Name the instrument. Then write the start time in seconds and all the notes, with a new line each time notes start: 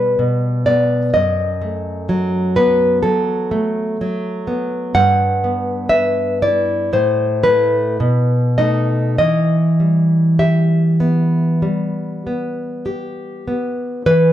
nylon-string guitar
Already playing: B2 G3 B3 B4
0.19 B2
0.66 B3 D5
1.14 F#2 D#5
1.61 A3
2.09 F#3
2.56 B3 B4
3.03 F#3 A4
3.51 A3
4.01 F#3
4.47 B3
4.95 G2 F#5
5.44 B3
5.89 B4 E5
6.42 E4 D5
6.93 A2 C5
7.43 A3 E4 B4
8.00 B2
8.58 A3 D#4 D#5
9.18 E3 D#5
9.80 G3
10.39 G4 E5
11.00 B3
11.62 G3
12.27 B3
12.86 G4
13.48 B3
14.06 E3 B4